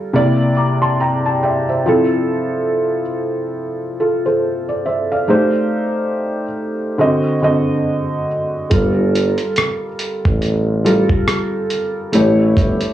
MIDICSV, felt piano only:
0, 0, Header, 1, 2, 480
1, 0, Start_track
1, 0, Tempo, 857143
1, 1040, Time_signature, 4, 2, 24, 8
1, 7243, End_track
2, 0, Start_track
2, 0, Title_t, "Felt piano"
2, 0, Program_c, 0, 0
2, 0, Control_c, 0, 64, 127
2, 0, Note_on_c, 0, 55, 77
2, 0, Note_on_c, 0, 65, 70
2, 0, Note_on_c, 0, 69, 74
2, 0, Note_on_c, 0, 70, 81
2, 74, Note_on_c, 0, 48, 88
2, 77, Note_on_c, 0, 58, 83
2, 82, Note_on_c, 0, 64, 75
2, 87, Note_on_c, 0, 74, 102
2, 88, Note_off_c, 0, 65, 0
2, 88, Control_c, 0, 64, 0
2, 91, Note_off_c, 0, 55, 0
2, 91, Note_off_c, 0, 69, 0
2, 93, Note_off_c, 0, 70, 0
2, 183, Control_c, 0, 64, 127
2, 277, Note_off_c, 0, 48, 0
2, 279, Note_off_c, 0, 58, 0
2, 281, Note_off_c, 0, 64, 0
2, 284, Note_off_c, 0, 74, 0
2, 316, Note_on_c, 0, 86, 58
2, 319, Note_on_c, 0, 82, 52
2, 452, Note_off_c, 0, 86, 0
2, 454, Note_off_c, 0, 82, 0
2, 457, Note_on_c, 0, 84, 66
2, 460, Note_on_c, 0, 81, 58
2, 553, Note_off_c, 0, 84, 0
2, 555, Note_off_c, 0, 81, 0
2, 561, Note_on_c, 0, 82, 70
2, 565, Note_on_c, 0, 79, 56
2, 697, Note_off_c, 0, 79, 0
2, 704, Note_on_c, 0, 81, 68
2, 784, Note_off_c, 0, 82, 0
2, 796, Note_off_c, 0, 81, 0
2, 800, Note_on_c, 0, 79, 63
2, 801, Note_on_c, 0, 74, 71
2, 806, Note_on_c, 0, 76, 51
2, 934, Note_off_c, 0, 79, 0
2, 937, Note_off_c, 0, 76, 0
2, 946, Note_on_c, 0, 76, 66
2, 949, Note_on_c, 0, 72, 53
2, 1024, Note_off_c, 0, 74, 0
2, 1041, Note_on_c, 0, 53, 81
2, 1044, Note_on_c, 0, 60, 71
2, 1046, Control_c, 0, 64, 0
2, 1049, Note_on_c, 0, 64, 69
2, 1055, Note_on_c, 0, 69, 83
2, 1129, Control_c, 0, 64, 127
2, 1172, Note_off_c, 0, 76, 0
2, 1173, Note_off_c, 0, 72, 0
2, 1684, Note_off_c, 0, 53, 0
2, 1685, Note_off_c, 0, 60, 0
2, 1688, Note_off_c, 0, 64, 0
2, 1691, Note_off_c, 0, 69, 0
2, 2240, Note_on_c, 0, 69, 59
2, 2243, Note_on_c, 0, 65, 55
2, 2374, Note_off_c, 0, 69, 0
2, 2376, Note_off_c, 0, 65, 0
2, 2384, Note_on_c, 0, 72, 60
2, 2388, Note_on_c, 0, 69, 51
2, 2610, Note_off_c, 0, 72, 0
2, 2613, Note_off_c, 0, 69, 0
2, 2624, Note_on_c, 0, 74, 60
2, 2717, Note_off_c, 0, 74, 0
2, 2719, Note_on_c, 0, 76, 67
2, 2723, Note_on_c, 0, 72, 52
2, 2853, Note_off_c, 0, 76, 0
2, 2856, Note_off_c, 0, 72, 0
2, 2865, Note_on_c, 0, 77, 66
2, 2869, Note_on_c, 0, 74, 48
2, 2955, Note_on_c, 0, 57, 73
2, 2959, Note_on_c, 0, 63, 73
2, 2965, Note_on_c, 0, 67, 76
2, 2968, Control_c, 0, 64, 0
2, 2968, Note_on_c, 0, 72, 85
2, 3068, Control_c, 0, 64, 127
2, 3091, Note_off_c, 0, 77, 0
2, 3093, Note_off_c, 0, 74, 0
2, 3601, Note_off_c, 0, 57, 0
2, 3603, Note_off_c, 0, 63, 0
2, 3606, Note_off_c, 0, 67, 0
2, 3608, Note_off_c, 0, 72, 0
2, 3910, Note_on_c, 0, 50, 86
2, 3915, Note_on_c, 0, 60, 78
2, 3921, Note_on_c, 0, 66, 76
2, 3925, Note_on_c, 0, 75, 86
2, 3927, Control_c, 0, 64, 0
2, 4029, Control_c, 0, 64, 127
2, 4115, Note_off_c, 0, 50, 0
2, 4118, Note_off_c, 0, 60, 0
2, 4121, Note_off_c, 0, 66, 0
2, 4123, Note_off_c, 0, 75, 0
2, 4155, Note_on_c, 0, 50, 73
2, 4161, Note_on_c, 0, 60, 68
2, 4163, Note_on_c, 0, 66, 75
2, 4168, Note_on_c, 0, 75, 86
2, 4629, Note_off_c, 0, 50, 0
2, 4632, Note_off_c, 0, 60, 0
2, 4633, Note_off_c, 0, 66, 0
2, 4636, Note_off_c, 0, 75, 0
2, 4873, Note_on_c, 0, 55, 75
2, 4878, Note_on_c, 0, 65, 66
2, 4883, Note_on_c, 0, 69, 69
2, 4887, Control_c, 0, 64, 0
2, 4888, Note_on_c, 0, 70, 80
2, 4977, Control_c, 0, 64, 127
2, 5520, Note_off_c, 0, 55, 0
2, 5522, Note_off_c, 0, 65, 0
2, 5525, Note_off_c, 0, 69, 0
2, 5527, Note_off_c, 0, 70, 0
2, 6074, Note_on_c, 0, 55, 80
2, 6078, Note_on_c, 0, 65, 75
2, 6082, Note_on_c, 0, 69, 75
2, 6086, Note_on_c, 0, 70, 88
2, 6549, Note_off_c, 0, 55, 0
2, 6551, Note_off_c, 0, 65, 0
2, 6553, Note_off_c, 0, 69, 0
2, 6555, Note_off_c, 0, 70, 0
2, 6789, Note_on_c, 0, 57, 84
2, 6795, Note_on_c, 0, 64, 81
2, 6800, Note_on_c, 0, 67, 75
2, 6804, Note_on_c, 0, 73, 90
2, 6807, Control_c, 0, 64, 0
2, 6918, Control_c, 0, 64, 127
2, 7243, Note_off_c, 0, 57, 0
2, 7243, Note_off_c, 0, 64, 0
2, 7243, Note_off_c, 0, 67, 0
2, 7243, Note_off_c, 0, 73, 0
2, 7243, End_track
0, 0, End_of_file